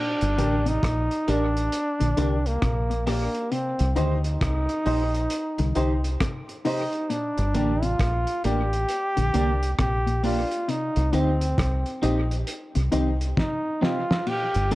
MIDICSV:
0, 0, Header, 1, 7, 480
1, 0, Start_track
1, 0, Tempo, 895924
1, 1885, Time_signature, 4, 2, 24, 8
1, 7902, End_track
2, 0, Start_track
2, 0, Title_t, "Upright piano"
2, 0, Program_c, 0, 0
2, 201, Note_on_c, 0, 62, 97
2, 203, Note_on_c, 0, 67, 90
2, 206, Note_on_c, 0, 70, 88
2, 208, Note_on_c, 0, 74, 98
2, 306, Note_off_c, 0, 62, 0
2, 307, Note_off_c, 0, 67, 0
2, 308, Note_off_c, 0, 70, 0
2, 309, Note_off_c, 0, 74, 0
2, 681, Note_on_c, 0, 62, 83
2, 683, Note_on_c, 0, 67, 78
2, 685, Note_on_c, 0, 70, 81
2, 688, Note_on_c, 0, 74, 91
2, 786, Note_off_c, 0, 62, 0
2, 787, Note_off_c, 0, 67, 0
2, 788, Note_off_c, 0, 70, 0
2, 789, Note_off_c, 0, 74, 0
2, 834, Note_on_c, 0, 74, 26
2, 835, Note_on_c, 0, 70, 23
2, 871, Note_off_c, 0, 70, 0
2, 871, Note_off_c, 0, 74, 0
2, 1161, Note_on_c, 0, 62, 79
2, 1162, Note_on_c, 0, 67, 75
2, 1165, Note_on_c, 0, 70, 78
2, 1168, Note_on_c, 0, 74, 100
2, 1266, Note_off_c, 0, 62, 0
2, 1266, Note_off_c, 0, 67, 0
2, 1268, Note_off_c, 0, 70, 0
2, 1269, Note_off_c, 0, 74, 0
2, 1640, Note_on_c, 0, 62, 82
2, 1641, Note_on_c, 0, 67, 75
2, 1644, Note_on_c, 0, 70, 77
2, 1646, Note_on_c, 0, 74, 89
2, 1745, Note_off_c, 0, 62, 0
2, 1746, Note_off_c, 0, 67, 0
2, 1747, Note_off_c, 0, 70, 0
2, 1748, Note_off_c, 0, 74, 0
2, 2120, Note_on_c, 0, 63, 91
2, 2121, Note_on_c, 0, 67, 91
2, 2123, Note_on_c, 0, 72, 96
2, 2126, Note_on_c, 0, 75, 107
2, 2225, Note_off_c, 0, 63, 0
2, 2226, Note_off_c, 0, 67, 0
2, 2227, Note_off_c, 0, 72, 0
2, 2228, Note_off_c, 0, 75, 0
2, 2601, Note_on_c, 0, 63, 82
2, 2603, Note_on_c, 0, 67, 77
2, 2605, Note_on_c, 0, 72, 75
2, 2607, Note_on_c, 0, 75, 100
2, 2705, Note_off_c, 0, 63, 0
2, 2706, Note_off_c, 0, 67, 0
2, 2708, Note_off_c, 0, 72, 0
2, 2708, Note_off_c, 0, 75, 0
2, 2753, Note_on_c, 0, 72, 22
2, 2754, Note_on_c, 0, 75, 24
2, 2790, Note_off_c, 0, 72, 0
2, 2791, Note_off_c, 0, 75, 0
2, 3082, Note_on_c, 0, 63, 92
2, 3083, Note_on_c, 0, 67, 76
2, 3086, Note_on_c, 0, 72, 82
2, 3088, Note_on_c, 0, 75, 89
2, 3186, Note_off_c, 0, 63, 0
2, 3187, Note_off_c, 0, 67, 0
2, 3188, Note_off_c, 0, 72, 0
2, 3189, Note_off_c, 0, 75, 0
2, 3561, Note_on_c, 0, 63, 83
2, 3563, Note_on_c, 0, 67, 80
2, 3565, Note_on_c, 0, 72, 70
2, 3567, Note_on_c, 0, 75, 97
2, 3666, Note_off_c, 0, 63, 0
2, 3667, Note_off_c, 0, 67, 0
2, 3668, Note_off_c, 0, 72, 0
2, 3669, Note_off_c, 0, 75, 0
2, 4041, Note_on_c, 0, 62, 97
2, 4043, Note_on_c, 0, 67, 92
2, 4046, Note_on_c, 0, 70, 91
2, 4047, Note_on_c, 0, 74, 106
2, 4145, Note_off_c, 0, 62, 0
2, 4147, Note_off_c, 0, 67, 0
2, 4148, Note_off_c, 0, 70, 0
2, 4149, Note_off_c, 0, 74, 0
2, 4521, Note_on_c, 0, 62, 82
2, 4523, Note_on_c, 0, 67, 84
2, 4526, Note_on_c, 0, 70, 78
2, 4527, Note_on_c, 0, 74, 86
2, 4626, Note_off_c, 0, 62, 0
2, 4627, Note_off_c, 0, 67, 0
2, 4628, Note_off_c, 0, 70, 0
2, 4629, Note_off_c, 0, 74, 0
2, 4675, Note_on_c, 0, 70, 24
2, 4675, Note_on_c, 0, 74, 25
2, 4711, Note_off_c, 0, 70, 0
2, 4711, Note_off_c, 0, 74, 0
2, 5002, Note_on_c, 0, 62, 84
2, 5004, Note_on_c, 0, 67, 79
2, 5005, Note_on_c, 0, 70, 81
2, 5008, Note_on_c, 0, 74, 94
2, 5106, Note_off_c, 0, 62, 0
2, 5107, Note_off_c, 0, 67, 0
2, 5108, Note_off_c, 0, 70, 0
2, 5109, Note_off_c, 0, 74, 0
2, 5481, Note_on_c, 0, 62, 85
2, 5483, Note_on_c, 0, 67, 77
2, 5485, Note_on_c, 0, 70, 76
2, 5487, Note_on_c, 0, 74, 94
2, 5586, Note_off_c, 0, 62, 0
2, 5586, Note_off_c, 0, 67, 0
2, 5588, Note_off_c, 0, 70, 0
2, 5589, Note_off_c, 0, 74, 0
2, 5961, Note_on_c, 0, 63, 97
2, 5963, Note_on_c, 0, 67, 88
2, 5965, Note_on_c, 0, 72, 82
2, 5967, Note_on_c, 0, 75, 106
2, 6065, Note_off_c, 0, 63, 0
2, 6067, Note_off_c, 0, 67, 0
2, 6067, Note_off_c, 0, 72, 0
2, 6068, Note_off_c, 0, 75, 0
2, 6441, Note_on_c, 0, 63, 88
2, 6443, Note_on_c, 0, 67, 77
2, 6446, Note_on_c, 0, 72, 78
2, 6448, Note_on_c, 0, 75, 96
2, 6545, Note_off_c, 0, 63, 0
2, 6547, Note_off_c, 0, 67, 0
2, 6548, Note_off_c, 0, 72, 0
2, 6549, Note_off_c, 0, 75, 0
2, 6593, Note_on_c, 0, 72, 24
2, 6593, Note_on_c, 0, 75, 24
2, 6630, Note_off_c, 0, 72, 0
2, 6630, Note_off_c, 0, 75, 0
2, 6919, Note_on_c, 0, 63, 85
2, 6921, Note_on_c, 0, 67, 78
2, 6924, Note_on_c, 0, 72, 78
2, 6926, Note_on_c, 0, 75, 96
2, 7025, Note_off_c, 0, 63, 0
2, 7026, Note_off_c, 0, 67, 0
2, 7027, Note_off_c, 0, 72, 0
2, 7028, Note_off_c, 0, 75, 0
2, 7399, Note_on_c, 0, 63, 75
2, 7402, Note_on_c, 0, 67, 73
2, 7404, Note_on_c, 0, 72, 71
2, 7405, Note_on_c, 0, 75, 93
2, 7505, Note_off_c, 0, 63, 0
2, 7506, Note_off_c, 0, 67, 0
2, 7507, Note_off_c, 0, 72, 0
2, 7508, Note_off_c, 0, 75, 0
2, 7880, Note_on_c, 0, 62, 96
2, 7882, Note_on_c, 0, 67, 89
2, 7884, Note_on_c, 0, 70, 88
2, 7885, Note_on_c, 0, 74, 107
2, 7902, Note_off_c, 0, 62, 0
2, 7902, Note_off_c, 0, 67, 0
2, 7902, Note_off_c, 0, 70, 0
2, 7902, Note_off_c, 0, 74, 0
2, 7902, End_track
3, 0, Start_track
3, 0, Title_t, "Clean electric guitar"
3, 0, Program_c, 1, 27
3, 207, Note_on_c, 1, 62, 81
3, 209, Note_on_c, 1, 67, 81
3, 213, Note_on_c, 1, 70, 77
3, 290, Note_off_c, 1, 62, 0
3, 291, Note_off_c, 1, 67, 0
3, 293, Note_off_c, 1, 70, 0
3, 687, Note_on_c, 1, 62, 73
3, 691, Note_on_c, 1, 67, 75
3, 694, Note_on_c, 1, 70, 83
3, 770, Note_off_c, 1, 62, 0
3, 772, Note_off_c, 1, 67, 0
3, 774, Note_off_c, 1, 70, 0
3, 1166, Note_on_c, 1, 62, 74
3, 1169, Note_on_c, 1, 67, 75
3, 1173, Note_on_c, 1, 70, 76
3, 1250, Note_off_c, 1, 62, 0
3, 1251, Note_off_c, 1, 67, 0
3, 1253, Note_off_c, 1, 70, 0
3, 1645, Note_on_c, 1, 62, 81
3, 1648, Note_on_c, 1, 67, 86
3, 1652, Note_on_c, 1, 70, 88
3, 1729, Note_off_c, 1, 62, 0
3, 1731, Note_off_c, 1, 67, 0
3, 1733, Note_off_c, 1, 70, 0
3, 2126, Note_on_c, 1, 63, 80
3, 2129, Note_on_c, 1, 67, 78
3, 2131, Note_on_c, 1, 72, 79
3, 2210, Note_off_c, 1, 63, 0
3, 2211, Note_off_c, 1, 67, 0
3, 2212, Note_off_c, 1, 72, 0
3, 2602, Note_on_c, 1, 63, 83
3, 2605, Note_on_c, 1, 67, 84
3, 2608, Note_on_c, 1, 72, 89
3, 2688, Note_off_c, 1, 63, 0
3, 2689, Note_off_c, 1, 67, 0
3, 2691, Note_off_c, 1, 72, 0
3, 3084, Note_on_c, 1, 63, 71
3, 3087, Note_on_c, 1, 67, 76
3, 3091, Note_on_c, 1, 72, 96
3, 3169, Note_off_c, 1, 63, 0
3, 3170, Note_off_c, 1, 67, 0
3, 3172, Note_off_c, 1, 72, 0
3, 3566, Note_on_c, 1, 63, 82
3, 3570, Note_on_c, 1, 67, 84
3, 3572, Note_on_c, 1, 72, 84
3, 3650, Note_off_c, 1, 63, 0
3, 3652, Note_off_c, 1, 67, 0
3, 3653, Note_off_c, 1, 72, 0
3, 4046, Note_on_c, 1, 58, 82
3, 4049, Note_on_c, 1, 62, 90
3, 4052, Note_on_c, 1, 67, 86
3, 4129, Note_off_c, 1, 58, 0
3, 4131, Note_off_c, 1, 62, 0
3, 4133, Note_off_c, 1, 67, 0
3, 4525, Note_on_c, 1, 58, 78
3, 4529, Note_on_c, 1, 62, 74
3, 4530, Note_on_c, 1, 67, 83
3, 4609, Note_off_c, 1, 58, 0
3, 4611, Note_off_c, 1, 62, 0
3, 4612, Note_off_c, 1, 67, 0
3, 5005, Note_on_c, 1, 58, 69
3, 5010, Note_on_c, 1, 62, 82
3, 5013, Note_on_c, 1, 67, 78
3, 5089, Note_off_c, 1, 58, 0
3, 5092, Note_off_c, 1, 62, 0
3, 5093, Note_off_c, 1, 67, 0
3, 5485, Note_on_c, 1, 58, 75
3, 5490, Note_on_c, 1, 62, 86
3, 5491, Note_on_c, 1, 67, 83
3, 5569, Note_off_c, 1, 58, 0
3, 5571, Note_off_c, 1, 62, 0
3, 5572, Note_off_c, 1, 67, 0
3, 5963, Note_on_c, 1, 60, 73
3, 5968, Note_on_c, 1, 63, 85
3, 5971, Note_on_c, 1, 67, 89
3, 6048, Note_off_c, 1, 60, 0
3, 6050, Note_off_c, 1, 63, 0
3, 6052, Note_off_c, 1, 67, 0
3, 6440, Note_on_c, 1, 60, 76
3, 6445, Note_on_c, 1, 63, 80
3, 6448, Note_on_c, 1, 67, 88
3, 6527, Note_off_c, 1, 60, 0
3, 6529, Note_off_c, 1, 63, 0
3, 6530, Note_off_c, 1, 67, 0
3, 6923, Note_on_c, 1, 60, 80
3, 6928, Note_on_c, 1, 63, 73
3, 6929, Note_on_c, 1, 67, 76
3, 7008, Note_off_c, 1, 60, 0
3, 7011, Note_off_c, 1, 63, 0
3, 7011, Note_off_c, 1, 67, 0
3, 7402, Note_on_c, 1, 60, 61
3, 7406, Note_on_c, 1, 63, 68
3, 7408, Note_on_c, 1, 67, 85
3, 7488, Note_off_c, 1, 60, 0
3, 7489, Note_off_c, 1, 63, 0
3, 7491, Note_off_c, 1, 67, 0
3, 7883, Note_on_c, 1, 58, 78
3, 7885, Note_on_c, 1, 62, 82
3, 7902, Note_off_c, 1, 58, 0
3, 7902, Note_off_c, 1, 62, 0
3, 7902, End_track
4, 0, Start_track
4, 0, Title_t, "Trombone"
4, 0, Program_c, 2, 57
4, 0, Note_on_c, 2, 62, 99
4, 367, Note_on_c, 2, 63, 99
4, 375, Note_off_c, 2, 62, 0
4, 696, Note_on_c, 2, 62, 98
4, 704, Note_off_c, 2, 63, 0
4, 1324, Note_on_c, 2, 58, 80
4, 1332, Note_off_c, 2, 62, 0
4, 1650, Note_off_c, 2, 58, 0
4, 1653, Note_on_c, 2, 58, 81
4, 1891, Note_on_c, 2, 60, 86
4, 1899, Note_off_c, 2, 58, 0
4, 2109, Note_off_c, 2, 60, 0
4, 2281, Note_on_c, 2, 63, 99
4, 3217, Note_off_c, 2, 63, 0
4, 3569, Note_on_c, 2, 63, 86
4, 3809, Note_on_c, 2, 62, 91
4, 3817, Note_off_c, 2, 63, 0
4, 4197, Note_on_c, 2, 65, 100
4, 4205, Note_off_c, 2, 62, 0
4, 4526, Note_off_c, 2, 65, 0
4, 4530, Note_on_c, 2, 67, 107
4, 5226, Note_off_c, 2, 67, 0
4, 5253, Note_on_c, 2, 67, 102
4, 5473, Note_off_c, 2, 67, 0
4, 5492, Note_on_c, 2, 65, 87
4, 5732, Note_on_c, 2, 63, 88
4, 5740, Note_off_c, 2, 65, 0
4, 5974, Note_on_c, 2, 60, 82
4, 5982, Note_off_c, 2, 63, 0
4, 6450, Note_off_c, 2, 60, 0
4, 7174, Note_on_c, 2, 63, 94
4, 7393, Note_off_c, 2, 63, 0
4, 7414, Note_on_c, 2, 65, 91
4, 7653, Note_on_c, 2, 67, 105
4, 7661, Note_off_c, 2, 65, 0
4, 7900, Note_off_c, 2, 67, 0
4, 7902, End_track
5, 0, Start_track
5, 0, Title_t, "Clean electric guitar"
5, 0, Program_c, 3, 27
5, 0, Note_on_c, 3, 46, 77
5, 74, Note_off_c, 3, 46, 0
5, 203, Note_on_c, 3, 50, 77
5, 314, Note_off_c, 3, 50, 0
5, 352, Note_on_c, 3, 48, 76
5, 420, Note_off_c, 3, 48, 0
5, 1072, Note_on_c, 3, 50, 73
5, 1140, Note_off_c, 3, 50, 0
5, 1163, Note_on_c, 3, 50, 79
5, 1275, Note_off_c, 3, 50, 0
5, 1404, Note_on_c, 3, 48, 74
5, 1515, Note_off_c, 3, 48, 0
5, 1555, Note_on_c, 3, 46, 68
5, 1621, Note_off_c, 3, 46, 0
5, 1644, Note_on_c, 3, 46, 72
5, 1755, Note_off_c, 3, 46, 0
5, 1884, Note_on_c, 3, 48, 83
5, 1995, Note_off_c, 3, 48, 0
5, 2123, Note_on_c, 3, 51, 70
5, 2235, Note_off_c, 3, 51, 0
5, 2995, Note_on_c, 3, 50, 69
5, 3062, Note_off_c, 3, 50, 0
5, 3085, Note_on_c, 3, 50, 80
5, 3196, Note_off_c, 3, 50, 0
5, 3325, Note_on_c, 3, 48, 73
5, 3436, Note_off_c, 3, 48, 0
5, 3563, Note_on_c, 3, 48, 75
5, 3674, Note_off_c, 3, 48, 0
5, 3803, Note_on_c, 3, 46, 74
5, 3915, Note_off_c, 3, 46, 0
5, 4042, Note_on_c, 3, 50, 82
5, 4154, Note_off_c, 3, 50, 0
5, 4192, Note_on_c, 3, 48, 74
5, 4260, Note_off_c, 3, 48, 0
5, 4912, Note_on_c, 3, 50, 77
5, 4980, Note_off_c, 3, 50, 0
5, 5002, Note_on_c, 3, 50, 83
5, 5114, Note_off_c, 3, 50, 0
5, 5243, Note_on_c, 3, 48, 75
5, 5354, Note_off_c, 3, 48, 0
5, 5392, Note_on_c, 3, 46, 68
5, 5459, Note_off_c, 3, 46, 0
5, 5482, Note_on_c, 3, 46, 74
5, 5594, Note_off_c, 3, 46, 0
5, 5724, Note_on_c, 3, 48, 84
5, 5835, Note_off_c, 3, 48, 0
5, 5963, Note_on_c, 3, 50, 69
5, 6074, Note_off_c, 3, 50, 0
5, 6833, Note_on_c, 3, 48, 63
5, 6900, Note_off_c, 3, 48, 0
5, 6921, Note_on_c, 3, 51, 80
5, 7034, Note_off_c, 3, 51, 0
5, 7164, Note_on_c, 3, 48, 67
5, 7275, Note_off_c, 3, 48, 0
5, 7406, Note_on_c, 3, 48, 78
5, 7516, Note_off_c, 3, 48, 0
5, 7643, Note_on_c, 3, 46, 81
5, 7755, Note_off_c, 3, 46, 0
5, 7885, Note_on_c, 3, 50, 75
5, 7902, Note_off_c, 3, 50, 0
5, 7902, End_track
6, 0, Start_track
6, 0, Title_t, "Fingered electric bass"
6, 0, Program_c, 4, 33
6, 118, Note_on_c, 4, 31, 91
6, 197, Note_off_c, 4, 31, 0
6, 208, Note_on_c, 4, 33, 88
6, 419, Note_off_c, 4, 33, 0
6, 446, Note_on_c, 4, 34, 91
6, 578, Note_off_c, 4, 34, 0
6, 689, Note_on_c, 4, 33, 83
6, 900, Note_off_c, 4, 33, 0
6, 1078, Note_on_c, 4, 34, 76
6, 1156, Note_off_c, 4, 34, 0
6, 1169, Note_on_c, 4, 36, 77
6, 1379, Note_off_c, 4, 36, 0
6, 1408, Note_on_c, 4, 34, 89
6, 1751, Note_off_c, 4, 34, 0
6, 2038, Note_on_c, 4, 36, 93
6, 2116, Note_off_c, 4, 36, 0
6, 2128, Note_on_c, 4, 38, 85
6, 2339, Note_off_c, 4, 38, 0
6, 2366, Note_on_c, 4, 36, 89
6, 2498, Note_off_c, 4, 36, 0
6, 2606, Note_on_c, 4, 34, 81
6, 2818, Note_off_c, 4, 34, 0
6, 2997, Note_on_c, 4, 36, 94
6, 3076, Note_off_c, 4, 36, 0
6, 3088, Note_on_c, 4, 36, 76
6, 3299, Note_off_c, 4, 36, 0
6, 3957, Note_on_c, 4, 31, 100
6, 4036, Note_off_c, 4, 31, 0
6, 4045, Note_on_c, 4, 33, 90
6, 4257, Note_off_c, 4, 33, 0
6, 4286, Note_on_c, 4, 34, 83
6, 4418, Note_off_c, 4, 34, 0
6, 4526, Note_on_c, 4, 33, 84
6, 4738, Note_off_c, 4, 33, 0
6, 4918, Note_on_c, 4, 34, 80
6, 4997, Note_off_c, 4, 34, 0
6, 5007, Note_on_c, 4, 36, 77
6, 5219, Note_off_c, 4, 36, 0
6, 5247, Note_on_c, 4, 34, 87
6, 5590, Note_off_c, 4, 34, 0
6, 5877, Note_on_c, 4, 36, 86
6, 5956, Note_off_c, 4, 36, 0
6, 5969, Note_on_c, 4, 38, 81
6, 6179, Note_off_c, 4, 38, 0
6, 6206, Note_on_c, 4, 36, 87
6, 6338, Note_off_c, 4, 36, 0
6, 6448, Note_on_c, 4, 34, 86
6, 6659, Note_off_c, 4, 34, 0
6, 6839, Note_on_c, 4, 36, 84
6, 6917, Note_off_c, 4, 36, 0
6, 6929, Note_on_c, 4, 36, 79
6, 7139, Note_off_c, 4, 36, 0
6, 7799, Note_on_c, 4, 31, 96
6, 7877, Note_off_c, 4, 31, 0
6, 7902, End_track
7, 0, Start_track
7, 0, Title_t, "Drums"
7, 113, Note_on_c, 9, 42, 59
7, 167, Note_off_c, 9, 42, 0
7, 206, Note_on_c, 9, 42, 62
7, 260, Note_off_c, 9, 42, 0
7, 355, Note_on_c, 9, 42, 54
7, 408, Note_off_c, 9, 42, 0
7, 445, Note_on_c, 9, 36, 106
7, 447, Note_on_c, 9, 42, 88
7, 452, Note_on_c, 9, 37, 105
7, 498, Note_off_c, 9, 36, 0
7, 501, Note_off_c, 9, 42, 0
7, 505, Note_off_c, 9, 37, 0
7, 595, Note_on_c, 9, 42, 52
7, 649, Note_off_c, 9, 42, 0
7, 685, Note_on_c, 9, 42, 74
7, 739, Note_off_c, 9, 42, 0
7, 840, Note_on_c, 9, 42, 54
7, 893, Note_off_c, 9, 42, 0
7, 923, Note_on_c, 9, 42, 86
7, 977, Note_off_c, 9, 42, 0
7, 1074, Note_on_c, 9, 42, 55
7, 1128, Note_off_c, 9, 42, 0
7, 1164, Note_on_c, 9, 42, 62
7, 1218, Note_off_c, 9, 42, 0
7, 1318, Note_on_c, 9, 42, 52
7, 1372, Note_off_c, 9, 42, 0
7, 1404, Note_on_c, 9, 37, 94
7, 1405, Note_on_c, 9, 36, 92
7, 1406, Note_on_c, 9, 42, 81
7, 1458, Note_off_c, 9, 37, 0
7, 1459, Note_off_c, 9, 36, 0
7, 1459, Note_off_c, 9, 42, 0
7, 1559, Note_on_c, 9, 42, 45
7, 1612, Note_off_c, 9, 42, 0
7, 1644, Note_on_c, 9, 46, 64
7, 1648, Note_on_c, 9, 37, 50
7, 1698, Note_off_c, 9, 46, 0
7, 1701, Note_off_c, 9, 37, 0
7, 1792, Note_on_c, 9, 42, 57
7, 1846, Note_off_c, 9, 42, 0
7, 1884, Note_on_c, 9, 42, 62
7, 1938, Note_off_c, 9, 42, 0
7, 2031, Note_on_c, 9, 42, 54
7, 2085, Note_off_c, 9, 42, 0
7, 2123, Note_on_c, 9, 42, 63
7, 2176, Note_off_c, 9, 42, 0
7, 2273, Note_on_c, 9, 42, 56
7, 2327, Note_off_c, 9, 42, 0
7, 2364, Note_on_c, 9, 36, 105
7, 2365, Note_on_c, 9, 42, 84
7, 2370, Note_on_c, 9, 37, 90
7, 2418, Note_off_c, 9, 36, 0
7, 2419, Note_off_c, 9, 42, 0
7, 2423, Note_off_c, 9, 37, 0
7, 2513, Note_on_c, 9, 42, 50
7, 2566, Note_off_c, 9, 42, 0
7, 2602, Note_on_c, 9, 46, 53
7, 2656, Note_off_c, 9, 46, 0
7, 2756, Note_on_c, 9, 42, 52
7, 2810, Note_off_c, 9, 42, 0
7, 2840, Note_on_c, 9, 42, 82
7, 2893, Note_off_c, 9, 42, 0
7, 2991, Note_on_c, 9, 42, 58
7, 3045, Note_off_c, 9, 42, 0
7, 3082, Note_on_c, 9, 42, 56
7, 3135, Note_off_c, 9, 42, 0
7, 3237, Note_on_c, 9, 42, 58
7, 3291, Note_off_c, 9, 42, 0
7, 3324, Note_on_c, 9, 36, 108
7, 3324, Note_on_c, 9, 37, 108
7, 3325, Note_on_c, 9, 42, 78
7, 3378, Note_off_c, 9, 36, 0
7, 3378, Note_off_c, 9, 37, 0
7, 3379, Note_off_c, 9, 42, 0
7, 3477, Note_on_c, 9, 42, 48
7, 3530, Note_off_c, 9, 42, 0
7, 3563, Note_on_c, 9, 46, 63
7, 3616, Note_off_c, 9, 46, 0
7, 3711, Note_on_c, 9, 42, 53
7, 3764, Note_off_c, 9, 42, 0
7, 3805, Note_on_c, 9, 42, 62
7, 3858, Note_off_c, 9, 42, 0
7, 3952, Note_on_c, 9, 42, 53
7, 4005, Note_off_c, 9, 42, 0
7, 4042, Note_on_c, 9, 42, 64
7, 4096, Note_off_c, 9, 42, 0
7, 4193, Note_on_c, 9, 42, 52
7, 4246, Note_off_c, 9, 42, 0
7, 4283, Note_on_c, 9, 36, 118
7, 4284, Note_on_c, 9, 42, 94
7, 4289, Note_on_c, 9, 37, 102
7, 4337, Note_off_c, 9, 36, 0
7, 4338, Note_off_c, 9, 42, 0
7, 4343, Note_off_c, 9, 37, 0
7, 4431, Note_on_c, 9, 42, 54
7, 4484, Note_off_c, 9, 42, 0
7, 4523, Note_on_c, 9, 42, 76
7, 4576, Note_off_c, 9, 42, 0
7, 4677, Note_on_c, 9, 42, 54
7, 4731, Note_off_c, 9, 42, 0
7, 4761, Note_on_c, 9, 42, 81
7, 4814, Note_off_c, 9, 42, 0
7, 4913, Note_on_c, 9, 42, 54
7, 4966, Note_off_c, 9, 42, 0
7, 5003, Note_on_c, 9, 42, 63
7, 5057, Note_off_c, 9, 42, 0
7, 5158, Note_on_c, 9, 42, 54
7, 5211, Note_off_c, 9, 42, 0
7, 5243, Note_on_c, 9, 37, 100
7, 5244, Note_on_c, 9, 42, 80
7, 5245, Note_on_c, 9, 36, 99
7, 5297, Note_off_c, 9, 37, 0
7, 5298, Note_off_c, 9, 36, 0
7, 5298, Note_off_c, 9, 42, 0
7, 5397, Note_on_c, 9, 42, 49
7, 5451, Note_off_c, 9, 42, 0
7, 5484, Note_on_c, 9, 46, 65
7, 5538, Note_off_c, 9, 46, 0
7, 5633, Note_on_c, 9, 42, 57
7, 5687, Note_off_c, 9, 42, 0
7, 5726, Note_on_c, 9, 42, 61
7, 5780, Note_off_c, 9, 42, 0
7, 5872, Note_on_c, 9, 42, 51
7, 5926, Note_off_c, 9, 42, 0
7, 5963, Note_on_c, 9, 42, 64
7, 6017, Note_off_c, 9, 42, 0
7, 6115, Note_on_c, 9, 42, 54
7, 6169, Note_off_c, 9, 42, 0
7, 6204, Note_on_c, 9, 36, 110
7, 6207, Note_on_c, 9, 42, 88
7, 6212, Note_on_c, 9, 37, 99
7, 6258, Note_off_c, 9, 36, 0
7, 6260, Note_off_c, 9, 42, 0
7, 6265, Note_off_c, 9, 37, 0
7, 6353, Note_on_c, 9, 42, 49
7, 6407, Note_off_c, 9, 42, 0
7, 6444, Note_on_c, 9, 42, 74
7, 6497, Note_off_c, 9, 42, 0
7, 6597, Note_on_c, 9, 42, 54
7, 6650, Note_off_c, 9, 42, 0
7, 6681, Note_on_c, 9, 42, 84
7, 6735, Note_off_c, 9, 42, 0
7, 6832, Note_on_c, 9, 42, 55
7, 6886, Note_off_c, 9, 42, 0
7, 6922, Note_on_c, 9, 42, 58
7, 6976, Note_off_c, 9, 42, 0
7, 7078, Note_on_c, 9, 42, 56
7, 7131, Note_off_c, 9, 42, 0
7, 7165, Note_on_c, 9, 36, 97
7, 7169, Note_on_c, 9, 38, 53
7, 7218, Note_off_c, 9, 36, 0
7, 7222, Note_off_c, 9, 38, 0
7, 7409, Note_on_c, 9, 38, 70
7, 7462, Note_off_c, 9, 38, 0
7, 7558, Note_on_c, 9, 38, 83
7, 7612, Note_off_c, 9, 38, 0
7, 7643, Note_on_c, 9, 49, 80
7, 7697, Note_off_c, 9, 49, 0
7, 7792, Note_on_c, 9, 42, 58
7, 7846, Note_off_c, 9, 42, 0
7, 7883, Note_on_c, 9, 42, 63
7, 7902, Note_off_c, 9, 42, 0
7, 7902, End_track
0, 0, End_of_file